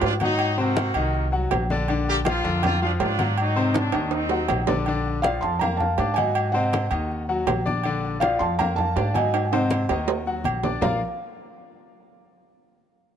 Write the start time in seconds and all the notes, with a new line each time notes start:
Already playing: F3 F4 F5
0.01 G#2 D4 F4, high conga, low timbale, low agogo
0.20 F#3 D#4 F#4 F#5, high conga, low agogo
0.39 high conga, low agogo
0.58 C3 A#3 C4 F#4 C5, high conga
0.76 high conga, low timbale, low agogo
0.94 C2 D#3 D#4 D#5, high conga, low agogo
1.14 high conga
1.32 F#3 F#4 F#5, high conga
1.51 A#1, high conga, low timbale, low agogo
1.70 D3 D4 D5, high conga
1.88 D3 D4 D5, high conga, low agogo
2.07 A#3 G4, high conga
2.25 F3 A#3 F4 F5, high conga, low timbale, low agogo
2.44 F2 D3 D4 D5
2.63 A#3 F4, high conga, low conga, low agogo
2.82 F3 D4 F4 F5, high conga
3.00 G#2 D4 F4, high conga, low timbale, low agogo
3.18 F#3 F#4 F#5, high conga, low agogo
3.38 F#3 D#4, high conga, low agogo
3.56 C3 C4 C5, high conga
3.74 F#3 D4, high conga, high timbale, low agogo
3.92 D#2 D#3 D#4 D#5, high conga, high timbale, low agogo
4.11 C4 D#4, high conga, high timbale
4.29 F#3 F#4 F#5, high conga, low timbale
4.48 A#1, high conga, low timbale, low agogo
4.67 D3 D4 D5, high conga, low timbale
4.86 D3 D4 D5, high conga, low agogo
5.06 high conga
5.22 F3 D5 F5, high conga, low timbale, low agogo
5.26 F4 F5
5.41 F2 A5 C6
5.59 A#3 A#4 F5 A#5, high conga, low conga, low agogo
5.77 F5 A5, high conga, low conga
5.98 G#2 D4 D5 D6, high conga, low timbale, low agogo
6.14 F#3 F#4 D#5 G#5, high conga, low agogo
6.18 F#5
6.35 high conga, low agogo
6.52 C3 C4 C5 D#5 F#5, high conga
6.73 high conga, low timbale, low agogo
6.91 D#2 D#3 D#4 D#5, high conga, low agogo
7.12 high conga
7.29 F#3 F#4 F#5, high conga
7.47 A#1, high conga, low timbale, low agogo
7.66 D4 D5 D6, high conga
7.84 D3 D4 D5, high conga, low agogo
8.05 high conga
8.20 F3 F4 D5 F5, high conga, low timbale, low agogo
8.39 F2 A5 C6
8.59 A#3 A#4 F5 A#5, high conga, low conga, low agogo
8.76 F5 A5, high conga, low conga
8.96 G#2 D4 D5 D6, high conga, low timbale, low agogo
9.14 F#3 F#4 D#5 F#5 G#5, high conga, low agogo
9.34 high conga, high timbale, low agogo
9.45 G#5
9.52 C3 C4 C5 D#5 F#5, high timbale
9.70 high conga, low agogo
9.89 D#2 D#3 D#4 D#5, high conga, low timbale, low agogo
10.07 high conga, low timbale
10.26 F#3 F#4 F#5, high conga
10.44 A#1, high conga, low agogo
10.63 D4 D5 D6, high conga, low timbale
10.81 A#1 A#3 F4 A#4 D5 F5 A#5, low conga, low timbale